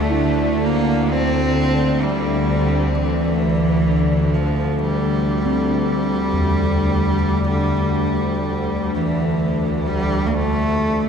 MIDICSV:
0, 0, Header, 1, 5, 480
1, 0, Start_track
1, 0, Tempo, 500000
1, 10644, End_track
2, 0, Start_track
2, 0, Title_t, "Ambient pad"
2, 0, Program_c, 0, 92
2, 9930, Note_on_c, 0, 62, 78
2, 10644, Note_off_c, 0, 62, 0
2, 10644, End_track
3, 0, Start_track
3, 0, Title_t, "Kettle gongs"
3, 0, Program_c, 1, 14
3, 97, Note_on_c, 1, 64, 62
3, 5237, Note_on_c, 1, 60, 57
3, 5415, Note_off_c, 1, 64, 0
3, 6075, Note_on_c, 1, 40, 46
3, 10558, Note_off_c, 1, 60, 0
3, 10644, Note_off_c, 1, 40, 0
3, 10644, End_track
4, 0, Start_track
4, 0, Title_t, "Cello"
4, 0, Program_c, 2, 42
4, 0, Note_on_c, 2, 57, 101
4, 626, Note_on_c, 2, 58, 104
4, 640, Note_off_c, 2, 57, 0
4, 1054, Note_on_c, 2, 60, 114
4, 1069, Note_off_c, 2, 58, 0
4, 1947, Note_on_c, 2, 55, 95
4, 1961, Note_off_c, 2, 60, 0
4, 2831, Note_on_c, 2, 52, 102
4, 2846, Note_off_c, 2, 55, 0
4, 4166, Note_on_c, 2, 53, 88
4, 4180, Note_off_c, 2, 52, 0
4, 4600, Note_on_c, 2, 55, 99
4, 4614, Note_off_c, 2, 53, 0
4, 8582, Note_off_c, 2, 55, 0
4, 8588, Note_on_c, 2, 52, 89
4, 9470, Note_on_c, 2, 55, 103
4, 9485, Note_off_c, 2, 52, 0
4, 9851, Note_on_c, 2, 58, 71
4, 9865, Note_off_c, 2, 55, 0
4, 9918, Note_on_c, 2, 57, 113
4, 9933, Note_off_c, 2, 58, 0
4, 10644, Note_off_c, 2, 57, 0
4, 10644, End_track
5, 0, Start_track
5, 0, Title_t, "Synth drone"
5, 0, Program_c, 3, 95
5, 0, Note_on_c, 3, 38, 77
5, 0, Note_on_c, 3, 50, 82
5, 9919, Note_off_c, 3, 50, 0
5, 9920, Note_off_c, 3, 38, 0
5, 9930, Note_on_c, 3, 50, 84
5, 9931, Note_on_c, 3, 38, 81
5, 10644, Note_off_c, 3, 38, 0
5, 10644, Note_off_c, 3, 50, 0
5, 10644, End_track
0, 0, End_of_file